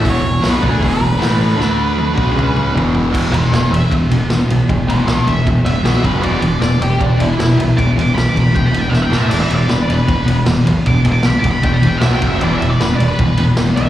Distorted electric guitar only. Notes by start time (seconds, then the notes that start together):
0.01 E2 B2 E3
0.22 E2 B2
0.40 B2 F#3 B3
0.60 D3 A3 D4
0.81 E2 B2 E3
1.00 E2 B2
1.18 A2 E3 A3
1.56 D3 A3 D4
2.14 B2 F#3 B3
2.33 C#3 G#3 C#4
2.72 E2 B2 E3
3.11 E2 B2 E3
3.31 E2 B2
3.52 E2 B2
3.70 E2 B2
3.91 E2 B2
4.11 E2 B2
4.30 E2 B2
4.51 E2 B2
4.68 E2 B2
4.88 E2 B2
5.08 E2 B2
5.27 E2 B2
5.47 E2 B2
5.66 E2 B2
5.84 B2 F#3 B3
6.04 F#2 C#3 F#3
6.23 E2 B2 E3
6.40 E2 B2
6.59 E2 B2
6.78 E2 B2
6.98 E2 B2
7.17 E2 B2
7.38 E2 B2
7.57 E2 B2
7.77 E2 B2
7.96 E2 B2
8.14 E2 B2
8.33 E2 B2
8.52 E2 B2
8.71 E2 B2
8.91 E2 B2
9.10 A2 E3 A3
9.32 E2 B2 E3
9.50 E2 B2
9.68 E2 B2
9.88 E2 B2
10.06 E2 B2
10.26 E2 B2
10.46 E2 B2
10.65 E2 B2
10.86 E2 B2
11.04 E2 B2
11.24 E2 B2
11.43 E2 B2
11.63 E2 B2
11.81 E2 B2
12.00 B2 F#3 B3
12.20 F#2 C#3 F#3
12.41 E2 B2 E3
12.60 E2 B2
12.81 E2 B2
13.00 E2 B2
13.21 E2 B2
13.39 E2 B2
13.58 E2 B2
13.76 E2 B2